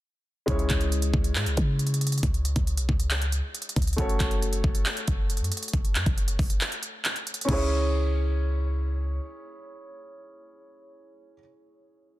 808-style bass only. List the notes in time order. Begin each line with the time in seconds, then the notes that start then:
0.48 C#2
0.70 C#2
1.14 C#2
1.35 G#2
1.46 C#2
1.57 C#3
2.23 C#2
2.56 C#2
2.78 B1
2.89 C#2
3.76 C#2
3.98 F#1
4.20 F#1
4.64 F#1
5.08 F#1
5.41 F#2
5.73 F#1
5.95 F#2
6.06 F#1
6.39 F#1
7.49 C#2